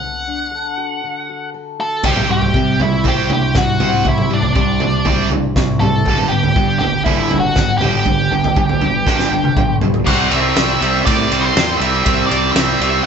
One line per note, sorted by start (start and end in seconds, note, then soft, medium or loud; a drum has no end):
0.00 1.03 D3 medium
0.00 0.27 D4 medium
0.00 1.49 F#5 medium
0.27 1.54 D4 medium
0.51 1.53 A4 medium
0.78 1.28 F#4 medium
1.04 2.04 D3 medium
1.30 1.79 F#4 medium
1.54 2.04 A4 medium
1.80 2.05 F#4 medium
1.80 2.03 A4 medium
2.03 2.27 C2 medium
2.03 2.28 C3 medium
2.03 3.30 C3 medium
2.03 2.28 G3 medium
2.03 2.28 C4 medium
2.03 2.30 G4 loud
2.03 kick loud
2.03 floor tom medium
2.03 crash medium
2.16 mid tom medium
2.28 2.52 C2 medium
2.28 2.52 C3 medium
2.28 2.52 G3 medium
2.28 2.54 G3 medium
2.28 2.82 G4 medium
2.41 floor tom medium
2.54 2.77 C3 medium
2.54 2.78 C3 medium
2.54 3.79 G3 medium
2.54 2.78 G3 medium
2.54 kick loud
2.79 3.02 C2 medium
2.79 3.03 C3 medium
2.79 3.03 G3 medium
2.79 3.53 C4 medium
2.79 3.07 E4 medium
2.79 floor tom medium
3.04 3.28 C2 medium
3.04 3.28 C3 medium
3.04 3.29 G3 medium
3.04 3.29 C4 loud
3.04 4.30 E4 medium
3.04 kick loud
3.04 floor tom medium
3.08 3.30 G4 loud
3.29 3.53 C2 medium
3.29 3.53 C3 medium
3.29 3.53 G3 medium
3.29 4.83 D4 medium
3.29 3.57 G4 medium
3.29 floor tom medium
3.54 3.78 C2 medium
3.54 3.78 C3 medium
3.54 3.78 G3 medium
3.54 4.79 C4 medium
3.54 4.08 F#4 medium
3.54 kick loud
3.54 snare medium
3.54 mid tom medium
3.79 4.04 C2 medium
3.79 4.04 C3 medium
3.79 4.29 G3 medium
3.79 4.04 G3 medium
3.79 4.04 C4 medium
3.79 floor tom medium
3.79 mid tom medium
4.05 4.28 C2 medium
4.05 5.31 C3 medium
4.05 4.29 C3 medium
4.05 4.29 G3 medium
4.05 4.30 E4 medium
4.05 kick loud
4.05 floor tom medium
4.18 mid tom medium
4.30 4.54 C2 medium
4.30 4.53 C3 medium
4.30 4.55 G3 medium
4.30 4.53 G3 medium
4.30 5.28 D4 medium
4.42 floor tom medium
4.55 5.02 C2 medium
4.55 4.78 C3 medium
4.55 5.79 G3 medium
4.55 4.78 G3 medium
4.55 kick loud
4.80 5.03 C3 medium
4.80 5.03 G3 medium
4.80 5.55 C4 medium
4.80 floor tom medium
5.05 5.52 C2 medium
5.05 5.29 C3 medium
5.05 5.29 G3 medium
5.05 5.29 C4 loud
5.05 6.06 E4 medium
5.05 kick loud
5.05 floor tom medium
5.29 5.54 C3 medium
5.29 5.54 G3 medium
5.29 7.30 D4 medium
5.29 floor tom medium
5.56 6.02 C2 medium
5.56 5.79 C3 medium
5.56 5.79 G3 medium
5.56 6.06 C4 medium
5.56 kick loud
5.56 snare medium
5.56 mid tom medium
5.80 6.04 C3 medium
5.80 6.05 G3 medium
5.80 6.04 G3 medium
5.80 6.27 A4 loud
5.80 floor tom medium
5.80 mid tom medium
6.05 6.29 G1 medium
6.05 6.30 G2 loud
6.05 6.31 D3 loud
6.05 6.55 G3 medium
6.05 6.31 G3 loud
6.05 kick loud
6.05 floor tom medium
6.18 mid tom medium
6.29 6.54 G1 medium
6.29 6.54 G2 medium
6.29 6.54 D3 medium
6.29 6.80 B3 medium
6.29 6.78 G4 loud
6.43 floor tom medium
6.56 6.79 G2 medium
6.56 6.79 D3 medium
6.56 7.80 G3 medium
6.56 kick loud
6.79 7.04 G1 medium
6.79 7.04 G2 medium
6.79 7.04 D3 medium
6.79 7.55 B3 medium
6.79 7.03 G4 medium
6.79 floor tom medium
7.04 7.29 G1 medium
7.04 7.30 G2 medium
7.04 7.30 D3 medium
7.04 7.30 G3 loud
7.04 7.39 E4 loud
7.04 8.32 A4 medium
7.04 kick loud
7.04 floor tom medium
7.30 7.54 G1 medium
7.30 7.54 G2 medium
7.30 7.54 D3 medium
7.30 8.56 D4 medium
7.30 floor tom medium
7.40 7.77 F#4 medium
7.56 7.79 G1 medium
7.56 7.79 G2 medium
7.56 7.79 D3 medium
7.56 8.30 B3 medium
7.56 kick loud
7.56 snare medium
7.56 mid tom medium
7.78 8.04 G1 medium
7.78 8.04 G2 medium
7.78 8.04 G3 medium
7.78 9.76 G4 medium
7.78 floor tom medium
7.78 mid tom medium
7.82 8.04 D3 medium
7.82 8.05 G3 medium
8.05 8.29 G1 loud
8.05 8.28 G2 medium
8.05 8.29 D3 medium
8.05 8.54 G3 medium
8.05 kick loud
8.05 floor tom medium
8.30 8.54 G1 medium
8.30 8.54 G2 medium
8.30 8.54 D3 medium
8.30 8.79 B3 medium
8.44 floor tom medium
8.55 9.02 G1 medium
8.55 8.79 G2 medium
8.55 8.79 D3 medium
8.55 9.80 G3 medium
8.55 kick loud
8.69 floor tom medium
8.80 9.04 G2 medium
8.80 9.04 D3 medium
8.80 9.56 B3 medium
8.80 floor tom medium
9.06 9.53 G1 medium
9.06 9.30 G2 medium
9.06 9.31 D3 medium
9.06 9.31 G3 loud
9.06 10.06 A4 medium
9.06 kick loud
9.06 snare medium
9.19 snare medium
9.30 9.55 G2 medium
9.30 9.55 D3 medium
9.30 10.06 D4 medium
9.44 high tom medium
9.57 10.03 B1 medium
9.57 9.80 G2 medium
9.57 9.80 D3 medium
9.57 10.07 B3 medium
9.57 kick loud
9.57 mid tom medium
9.81 10.04 G2 medium
9.81 10.05 D3 medium
9.81 10.06 G3 medium
9.81 floor tom medium
9.94 floor tom medium
10.06 10.26 C2 medium
10.06 10.30 C3 loud
10.06 10.31 G3 loud
10.06 10.32 C4 loud
10.06 10.33 F#5 loud
10.06 kick loud
10.06 crash loud
10.31 10.51 C2 medium
10.31 10.56 C3 medium
10.31 10.56 G3 medium
10.31 10.56 C4 medium
10.31 11.05 E5 medium
10.31 ride medium
10.56 10.76 C2 medium
10.56 10.81 C3 medium
10.56 10.81 G3 medium
10.56 10.81 C4 medium
10.56 snare loud
10.56 ride loud
10.81 11.01 C2 medium
10.81 11.05 C3 medium
10.81 11.06 G3 medium
10.81 11.05 C4 medium
10.81 ride medium
11.05 11.26 A2 medium
11.05 11.31 C3 loud
11.05 11.31 G3 loud
11.05 11.32 C4 loud
11.05 11.44 D5 medium
11.05 kick loud
11.05 ride loud
11.32 11.51 C2 medium
11.32 11.54 C3 medium
11.32 11.56 G3 medium
11.32 11.55 C4 medium
11.32 ride medium
11.41 11.81 C5 medium
11.56 11.75 E2 medium
11.56 11.79 C3 medium
11.56 11.82 G3 medium
11.56 11.81 C4 medium
11.56 snare loud
11.56 ride loud
11.77 12.00 C2 medium
11.77 12.03 C3 medium
11.77 12.26 E5 medium
11.82 12.04 G3 medium
11.82 12.04 C4 medium
11.82 ride medium
12.04 12.25 C2 loud
12.04 12.28 C3 medium
12.04 12.30 G3 loud
12.04 12.29 C4 loud
12.04 kick loud
12.04 ride medium
12.26 12.50 C2 medium
12.26 12.54 C3 medium
12.26 12.55 G3 medium
12.26 12.52 D5 medium
12.31 12.55 C4 medium
12.31 ride medium
12.52 12.74 C2 medium
12.52 12.80 C3 medium
12.52 12.81 G3 medium
12.52 12.81 C4 medium
12.52 13.01 E5 loud
12.52 snare loud
12.52 ride medium
12.80 13.00 C2 medium
12.80 13.05 C3 medium
12.80 13.05 G3 medium
12.80 13.05 C4 medium
12.80 ride medium